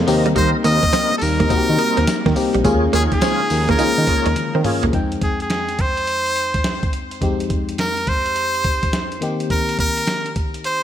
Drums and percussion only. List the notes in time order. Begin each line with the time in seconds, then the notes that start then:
0.08 open hi-hat, tambourine
0.26 closed hi-hat
0.36 kick, closed hi-hat, tambourine
0.64 closed hi-hat, tambourine
0.83 kick, closed hi-hat
0.93 snare, closed hi-hat, tambourine
1.21 open hi-hat, tambourine
1.40 kick, closed hi-hat
1.50 kick, closed hi-hat, tambourine
1.79 closed hi-hat
1.97 closed hi-hat
2.07 snare, closed hi-hat, tambourine
2.26 kick, snare
2.36 open hi-hat, tambourine
2.54 closed hi-hat
2.65 kick, closed hi-hat, tambourine
2.93 closed hi-hat, tambourine
3.12 kick, closed hi-hat
3.21 snare, closed hi-hat, tambourine
3.50 open hi-hat, tambourine
3.69 kick, closed hi-hat
3.79 closed hi-hat, tambourine
4.07 kick, closed hi-hat
4.26 closed hi-hat
4.36 closed hi-hat, high tom
4.64 mid tom, open hi-hat
4.83 closed hi-hat, floor tom
4.93 kick, closed hi-hat
5.12 closed hi-hat
5.21 kick, closed hi-hat
5.40 closed hi-hat
5.50 snare, closed hi-hat
5.69 closed hi-hat
5.79 kick, closed hi-hat
5.97 closed hi-hat
6.07 closed hi-hat
6.26 closed hi-hat
6.36 closed hi-hat
6.54 kick, closed hi-hat
6.64 snare, closed hi-hat
6.83 kick, closed hi-hat
6.93 closed hi-hat
7.11 closed hi-hat
7.22 kick, closed hi-hat
7.40 closed hi-hat
7.50 kick, closed hi-hat
7.69 closed hi-hat
7.78 snare, closed hi-hat
7.97 closed hi-hat
8.07 kick, closed hi-hat
8.26 closed hi-hat
8.36 closed hi-hat
8.54 closed hi-hat
8.64 kick, closed hi-hat
8.83 kick, closed hi-hat
8.93 snare, closed hi-hat
9.12 closed hi-hat
9.22 closed hi-hat
9.40 closed hi-hat
9.50 kick, closed hi-hat
9.69 closed hi-hat
9.79 kick, closed hi-hat
9.97 closed hi-hat
10.07 snare, closed hi-hat
10.26 closed hi-hat
10.36 kick, closed hi-hat
10.54 closed hi-hat
10.64 closed hi-hat